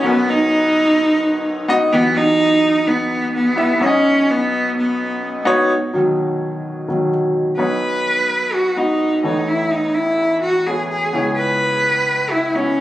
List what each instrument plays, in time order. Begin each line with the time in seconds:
Already playing: grand piano B1 B2 B3 D#4 F#4 C#5 D#5
0.03 grand piano B1 B2 B3 D#4 F#4 A#4, cello B3
0.10 grand piano B4
0.29 cello D#4
1.68 grand piano B3 D#4 F#4 D#5
1.92 grand piano B1 B2 E3 B3 G4 G5, cello B3
2.16 cello D#4
2.87 cello B3
3.35 cello B3
3.56 grand piano B3 E4 G4 E5
3.80 grand piano B1 B2 B3 D#4 F#4 C#5, cello C#4
3.87 grand piano D#5
4.30 cello B3
4.77 cello B3
5.45 grand piano B3 D#4 F#4 C#5
5.93 grand piano B2 D#3 F#3
6.88 grand piano B2 D#3 F#3
7.58 grand piano B1 B2 B3 D#4 C#5, cello B4
8.54 cello F#4
8.76 grand piano B3 D#4 F#4, cello D#4
9.23 grand piano A1 A2 B3 A4 C#5, cello D#4
9.48 cello E4
9.71 cello D#4
9.94 cello E4
10.42 cello F#4
10.67 grand piano B3 A4 C#5, cello G#4
10.90 cello G#4
11.13 grand piano C#2 C#3 B3 E4 C#5
11.37 cello B4
12.31 cello E4
12.55 grand piano B3 E4 C#5, cello C#4